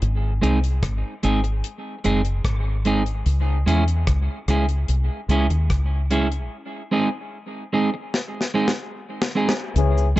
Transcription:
0.02 fingered electric bass G#1, closed hi-hat
0.42 fingered electric bass C2, clean electric guitar G#3 C4 D#4 G#4, closed hi-hat
0.64 closed hi-hat
0.83 fingered electric bass G#1, kick, cross-stick, closed hi-hat
1.23 fingered electric bass G#1, clean electric guitar G#3 C4 D#4 G#4, closed hi-hat
1.44 muted clean electric guitar stroke, closed hi-hat
1.64 closed hi-hat
2.04 fingered electric bass F#1, clean electric guitar G#3 C4 D#4 G#4, closed hi-hat
2.25 closed hi-hat
2.45 fingered electric bass G#1, kick, cross-stick, closed hi-hat
2.85 clean electric guitar G#3 C4 D#4 G#4, closed hi-hat
3.06 closed hi-hat
3.26 fingered electric bass C#2, closed hi-hat
3.66 fingered electric bass E2, clean electric guitar G#3 C#4 E4 G#4, closed hi-hat
3.88 closed hi-hat
4.07 fingered electric bass C#2, kick, cross-stick, closed hi-hat
4.48 fingered electric bass C#2, clean electric guitar G#3 C#4 E4 G#4, cross-stick, closed hi-hat
4.69 closed hi-hat
4.88 fingered electric bass C2, closed hi-hat
5.29 fingered electric bass C#2, clean electric guitar G#3 C#4 E4 G#4, closed hi-hat
5.50 fingered electric bass D#2, muted clean electric guitar stroke, closed hi-hat
5.70 fingered electric bass C#2, kick, cross-stick, closed hi-hat
6.11 clean electric guitar G#3 C#4 E4 G#4, closed hi-hat
6.32 closed hi-hat
6.92 clean electric guitar G#3 C4 D#4 G#4
7.73 clean electric guitar G#3 C4 D#4 G#4
7.94 muted clean electric guitar stroke
8.14 snare
8.41 snare
8.54 clean electric guitar G#3 C4 D#4 G#4
8.68 snare
9.22 snare
9.35 clean electric guitar G#3 C4 D#4 G#4
9.49 snare
9.76 fingered electric bass C#2, clean electric guitar C#3, trombone section E3 C#4 G#4, closed hi-hat, cabasa
9.98 cabasa
10.16 fingered electric bass E2, clean electric guitar B2 G#3

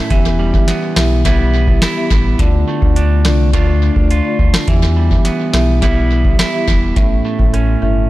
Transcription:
Already playing: clean electric guitar A2 A3 C#4 E4
0.10 sub bass E1, clean electric guitar E3, marimba B3 E4 G4 E5, kick, closed hi-hat
0.39 clean electric guitar G3
0.53 marimba B3 E4 G4 E5, kick
0.68 clean electric guitar B3, snare, closed hi-hat
0.96 sub bass B1, marimba B3 E4 G4 E5, cross-stick, snare
1.25 clean electric guitar G3 B3 E4, marimba B3 E4 G4 E5, kick, closed hi-hat
1.68 marimba B3 E4 G4 E5, kick
1.82 clean electric guitar E4, cross-stick, snare, closed hi-hat
1.96 marimba B3 E4 G4 E5
2.11 sub bass A1, kick
2.39 sub bass D2, clean electric guitar D3, marimba A3 D4 F4 D5, kick, closed hi-hat
2.68 clean electric guitar A3
2.82 sub bass D2, marimba A3 D4 F4 D5, kick
2.96 clean electric guitar D4, closed hi-hat
3.25 sub bass C2, marimba A3 D4 F4 D5, cross-stick, snare
3.53 sub bass D2, marimba A3 D4 F4 D5, clean electric guitar A3 D4 F4, kick, closed hi-hat
3.96 sub bass D2, marimba A3 D4 F4 D5, kick
4.11 clean electric guitar F4, closed hi-hat
4.24 marimba A3 D4 F4 D5
4.39 sub bass D2, kick
4.54 cross-stick, snare
4.67 sub bass E2, clean electric guitar E3, marimba B3 E4 G4 E5, kick, closed hi-hat
4.96 clean electric guitar G3
5.10 marimba B3 E4 G4 E5, kick
5.25 clean electric guitar B3, snare, closed hi-hat
5.53 sub bass B1, marimba B3 E4 G4 E5, cross-stick, snare
5.81 clean electric guitar G3 B3 E4, marimba B3 E4 G4 E5, kick, closed hi-hat
6.24 marimba B3 E4 G4 E5, kick
6.39 clean electric guitar E4, cross-stick, snare, closed hi-hat
6.53 marimba B3 E4 G4 E5
6.68 sub bass E1, kick
6.96 sub bass A1, clean electric guitar A2, marimba C#4 E4 A4 E5, kick, closed hi-hat
7.25 clean electric guitar A3
7.39 sub bass A1, marimba C#4 E4 A4 E5, kick
7.54 clean electric guitar C#4, cross-stick, closed hi-hat
7.82 sub bass G1, marimba C#4 E4 A4 E5

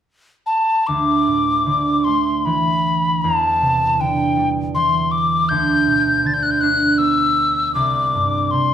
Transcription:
0.46 tin whistle A5
0.87 harp D2, tin whistle D6
1.27 harp A2
1.66 harp D3
2.04 harp A3, tin whistle C6
2.45 harp E3, tin whistle B5
3.22 harp E2, tin whistle A5
3.62 harp C3
3.99 harp D3, tin whistle G5
4.37 harp G3
4.75 harp E3, tin whistle C6
5.11 tin whistle D6
5.49 harp D2, tin whistle G6
5.87 harp B2
6.25 harp D3, tin whistle A6
6.34 tin whistle G6
6.43 tin whistle F#6
6.51 tin whistle G6
6.61 harp D4, tin whistle F#6
6.98 harp B3, tin whistle E6
7.75 harp C2, tin whistle D6
8.14 harp G2
8.51 harp C3, tin whistle C6

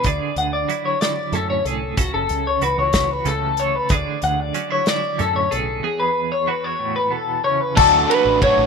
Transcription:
Already playing: clean electric guitar E3
0.04 picked electric bass D2, clean electric guitar D3 G#4 D5, kick, closed hi-hat
0.36 picked electric bass D2, clean electric guitar F#5, closed hi-hat
0.53 clean electric guitar D5
0.69 clean electric guitar F#3 E4, closed hi-hat
0.85 clean electric guitar C#5
1.01 clean electric guitar D5, snare, closed hi-hat
1.33 picked electric bass F#2, clean electric guitar A2 C#4 A4, closed hi-hat
1.50 clean electric guitar C#5
1.65 picked electric bass C2, clean electric guitar G#4 A4, closed hi-hat
1.97 picked electric bass C#2, clean electric guitar C#3 F#4 A4, kick, closed hi-hat
2.14 picked electric bass F#1, clean electric guitar A4
2.29 picked electric bass C#2, closed hi-hat
2.47 clean electric guitar C#5
2.61 picked electric bass C#2, clean electric guitar E3 F#4 B4, closed hi-hat
2.78 picked electric bass C#2, clean electric guitar C#5
2.93 picked electric bass C#2, kick, snare, closed hi-hat
3.11 clean electric guitar B4
3.25 picked electric bass C#2, clean electric guitar C#3 A3 A4, closed hi-hat
3.57 clean electric guitar A4 C#5, closed hi-hat
3.76 clean electric guitar B4
3.89 picked electric bass D2, clean electric guitar D3 G#4 D5, kick, closed hi-hat
4.22 picked electric bass D2, clean electric guitar F#5, closed hi-hat
4.40 clean electric guitar D5
4.54 clean electric guitar F#3 C#4, closed hi-hat
4.70 clean electric guitar E4 C#5
4.86 clean electric guitar D5, snare, closed hi-hat
5.18 picked electric bass F#2, clean electric guitar A2 C#4 A4, closed hi-hat
5.36 clean electric guitar C#5
5.51 picked electric bass B1, clean electric guitar G#4 A4, closed hi-hat
5.83 clean electric guitar E2 G#4
6.00 clean electric guitar B4
6.32 clean electric guitar C#5
6.47 clean electric guitar E3 F#4 B4
6.64 clean electric guitar C#5
6.79 clean electric guitar A2
6.96 clean electric guitar B4
7.11 clean electric guitar B2 A4
7.44 clean electric guitar C#3 C#5
7.61 clean electric guitar B4
7.76 picked electric bass D2, overdriven electric guitar F#3 A3 D4 F#4, clean electric guitar A4, kick, crash
8.07 overdriven electric guitar F#3 A3 D4 F#4, clean electric guitar B4, ride
8.25 picked electric bass A1
8.41 overdriven electric guitar F#3 A3 D4 F#4, clean electric guitar C#5, kick, ride
8.58 picked electric bass A1

